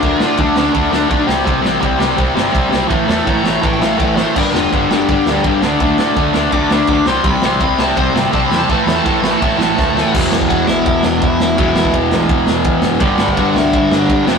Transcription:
<<
  \new Staff \with { instrumentName = "Lead electric guitar" } { \time 4/4 \key g \major \tempo 4 = 166 bes'8 f'8 d'8 d'2 r8 | r1 | r4 bes''4 g''8 f''8 d''8 c''8 | bes'8 f'8 d'8 g'2 r8 |
r2 d'''8 r8 d'''8 c'''8 | b''8 c'''8 b''8 a''8 c''8 r8 \tuplet 3/2 { a''8 b''8 a''8 } | \tuplet 3/2 { a''8 b''8 a''8 a''8 b''8 a''8 } a''2 | r4 <fis' fis''>8 <e' e''>8 <e' e''>8 <d' d''>8 <e' e''>8 <e' e''>8 |
<e' e''>4 r2. | r4 <fis' fis''>8 <e' e''>8 <e' e''>8 <d' d''>8 <d' d''>4 | }
  \new Staff \with { instrumentName = "Distorted electric guitar" } { \clef bass \time 4/4 \key g \major <d a d'>8 <d a d'>8 <d a d'>8 <d a d'>8 <d a d'>8 <d a d'>8 <d a d'>8 <c g c'>8 | <c g c'>8 <c g c'>8 <c g c'>8 <c g c'>8 <c g c'>8 <c g c'>8 <c g c'>8 <c g c'>8 | <a, e a>8 <a, e a>8 <a, e a>8 <a, e a>8 <a, e a>8 <a, e a>8 <a, e a>8 <a, e a>8 | <g, d g>8 <g, d g>8 <g, d g>8 <g, d g>8 <g, d g>8 <g, d g>8 <g, d g>8 <d a d'>8 |
<d a d'>8 <d a d'>8 <d a d'>8 <d a d'>8 <d a d'>8 <d a d'>8 <d a d'>8 <c g c'>8 | <c g c'>8 <c g c'>8 <c g c'>8 <c g c'>8 <c g c'>8 <c g c'>8 <c g c'>8 <c g c'>8 | <a, e a>8 <a, e a>8 <a, e a>8 <a, e a>8 <a, e a>8 <a, e a>8 <a, e a>8 <a, e a>8 | <e, b, e>1 |
<e, b, e>1 | <g, d g>2.~ <g, d g>8 <f, c f>8 | }
  \new Staff \with { instrumentName = "Picked electric bass" } { \clef bass \time 4/4 \key g \major d,8 a,8 d,8 d,8 d,8 d,8 b,,8 c,8 | c,8 a,,8 c,8 c,8 c,8 g,,8 c,8 b,,8 | a,,8 e,8 a,,8 a,,8 a,,8 a,,8 a,,4 | g,,8 e,,8 g,,8 g,,8 g,,8 d,8 g,,8 d,8 |
d,8 a,8 d,8 d,8 d,8 d,8 d,8 c,8 | c,8 a,,8 c,8 c,8 c,8 g,,8 c,8 e,8 | a,,8 e,8 a,,8 a,,8 a,,8 a,,8 d,4 | e,,8 e,,8 e,,8 a,,8 e,,8 e,,8 e,8 e,,8 |
e,,8 e,,8 e,,8 a,,8 e,,8 e,,8 e,8 fis,,8 | g,,8 g,,8 g,,8 c,8 g,,8 g,,8 g,8 f,,8 | }
  \new DrumStaff \with { instrumentName = "Drums" } \drummode { \time 4/4 <bd cymr>8 sn8 <bd cymr>8 sn8 <bd cymr>8 sn8 <bd cymr>8 sn8 | <bd cymr>8 sn8 <bd cymr>8 sn8 <bd cymr>8 sn8 <bd cymr>8 sn8 | <bd cymr>8 sn8 <bd cymr>8 sn8 <bd cymr>8 sn8 <bd cymr>8 sn8 | <cymc bd>8 sn8 <bd cymr>8 sn8 <bd cymr>8 sn8 <bd cymr>8 sn8 |
<bd cymr>8 sn8 <bd cymr>8 sn8 <bd cymr>8 sn8 <bd cymr>8 sn8 | <bd cymr>8 sn8 <bd cymr>8 sn8 <bd cymr>8 sn8 <bd cymr>8 sn8 | <bd cymr>8 sn8 <bd cymr>8 sn8 <bd cymr>8 sn8 <bd sn>8 sn8 | <cymc bd>8 sn16 bd16 <bd cymr>8 sn8 <bd cymr>8 sn8 <bd cymr>8 sn8 |
<bd cymr>8 sn16 bd16 <bd cymr>8 sn8 <bd cymr>8 sn8 <bd cymr>8 sn8 | <bd cymr>8 sn16 bd16 <bd cymr>8 sn8 <bd cymr>8 sn8 <bd cymr>8 sn8 | }
>>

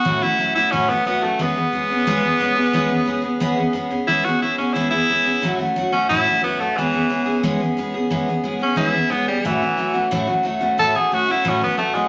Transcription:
<<
  \new Staff \with { instrumentName = "Tenor saxophone" } { \time 4/4 \key e \major \tempo 4 = 179 fis'8 e'4 e'8 cis'8 b8 b8 a8 | b1~ | b2. r4 | e'8 fis'8 e'8 cis'8 e'8 e'4.~ |
e'8 r4 cis'8 e'4 b8 a8 | e2 r2 | r4. cis'8 e'4 b8 g8 | e2 r2 |
a'8 gis'8 fis'8 e'8 cis'8 b8 a8 gis8 | }
  \new Staff \with { instrumentName = "Steel-string acoustic guitar" } { \time 4/4 \key e \major <a, e fis a cis' fis'>8 <fis a cis' fis'>8 <fis a cis' fis'>8 <fis a cis' fis'>8 <a, e fis a cis' fis'>8 <fis a cis' fis'>8 <fis a cis' fis'>8 <fis a cis' fis'>8 | <e gis b cis' gis'>8 <b cis' gis'>8 <gis b cis' gis'>8 <b cis' gis'>8 <e gis b cis' gis'>8 <b cis' gis'>8 <gis b cis' gis'>8 <b cis' gis'>8 | <e gis b cis' gis'>8 <b cis' gis'>8 <gis b cis' gis'>8 <b cis' gis'>8 <e gis b cis' gis'>8 <b cis' gis'>8 <gis b cis' gis'>8 <b cis' gis'>8 | <e gis b cis' gis'>8 <b cis' gis'>8 <gis b cis' gis'>8 <b cis' gis'>8 <e gis b cis' gis'>8 <b cis' gis'>8 <gis b cis' gis'>8 <b cis' gis'>8 |
<a, e fis a cis' fis'>8 <fis a cis' fis'>8 <fis a cis' fis'>8 <fis a cis' fis'>8 <a, e fis a cis' fis'>8 <fis a cis' fis'>8 <fis a cis' fis'>8 <fis a cis' fis'>8 | <e gis b cis' gis'>8 <b cis' gis'>8 <gis b cis' gis'>8 <b cis' gis'>8 <e gis b cis' gis'>8 <b cis' gis'>8 <gis b cis' gis'>8 <b cis' gis'>8 | <e gis b cis' gis'>8 <b cis' gis'>8 <gis b cis' gis'>8 <b cis' gis'>8 <e gis b cis' gis'>8 <b cis' gis'>8 <gis b cis' gis'>8 <b cis' gis'>8 | <a, e fis a cis' fis'>8 <fis a cis' fis'>8 <fis a cis' fis'>8 <fis a cis' fis'>8 <a, e fis a cis' fis'>8 <fis a cis' fis'>8 <fis a cis' fis'>8 <fis a cis' fis'>8 |
<a, e fis a cis' fis'>8 <fis a cis' fis'>8 <fis a cis' fis'>8 <fis a cis' fis'>8 <a, e fis a cis' fis'>8 <fis a cis' fis'>8 <fis a cis' fis'>8 <fis a cis' fis'>8 | }
>>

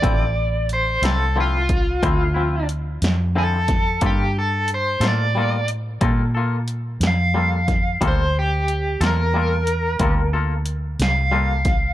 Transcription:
<<
  \new Staff \with { instrumentName = "Overdriven electric guitar" } { \time 12/8 \key g \dorian \tempo 4. = 60 d''4 c''8 a'8 f'2 r4 a'4 | g'8 a'8 c''8 d''4 r2 f''4. | c''8 g'4 bes'2 r4 f''4. | }
  \new Staff \with { instrumentName = "Clean electric guitar" } { \time 12/8 \key g \dorian <d f c' e'>8 r4 <f c' e'>8 <d f c' e'>8 r8 <d f c' e'>8 <f c' e'>8 r4 <d f c' e'>8 r8 | <g bes f' a'>8 r4 <bes f' a'>8 <g bes f' a'>8 r8 <g bes f' a'>8 <bes f' a'>8 r4 <g bes f' a'>8 r8 | <g bes f' a'>8 r4 <bes f' a'>8 <g bes f' a'>8 r8 <g bes f' a'>8 <bes f' a'>8 r4 <g bes f' a'>8 r8 | }
  \new Staff \with { instrumentName = "Fingered electric bass" } { \clef bass \time 12/8 \key g \dorian a,,4. c,4. d,4. f,4. | g,4. a,4. bes,4. f,4. | d,4. e,4. d,4. c,4. | }
  \new DrumStaff \with { instrumentName = "Drums" } \drummode { \time 12/8 <hh bd>4 hh8 <hh sn>4 <hh bd>8 <hh bd>4 hh8 <hh sn>4 <hh bd sn>8 | <hh bd>4 hh8 <hh sn>4 hh8 <hh bd>4 hh8 <hh sn>4 <hh bd sn>8 | <hh bd>4 hh8 <hh sn>4 hh8 <hh bd>4 hh8 <hh sn>4 <hh bd sn>8 | }
>>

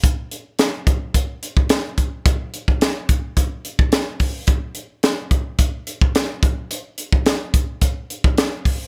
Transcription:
\new DrumStaff \with { instrumentName = "Drums" } \drummode { \time 4/4 \tempo 4 = 108 <hh bd>8 hh8 <hh sn>8 <hh bd>8 <hh bd>8 hh16 bd16 <hh sn>8 <hh bd>8 | <hh bd>8 hh16 bd16 <hh sn>8 <hh bd>8 <hh bd>8 hh16 bd16 <hh sn>8 <hho bd>8 | <hh bd>8 hh8 <hh sn>8 <hh bd>8 <hh bd>8 hh16 bd16 <hh sn>8 <hh bd>8 | hh8 hh16 bd16 <hh sn>8 <hh bd>8 <hh bd>8 hh16 bd16 <hh sn>8 <hho bd>8 | }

